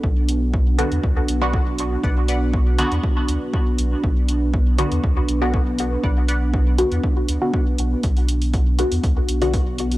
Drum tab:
HH |--x---xx--x---x-|--x---xx--x---x-|--x---xx--x---x-|--x---xx--x---x-|
BD |o---o---o---o---|o---o---o---o---|o---o---o---o---|o---o---o---o---|

HH |xxxxx-xxx-xxx-xx|
BD |o---o---o---o---|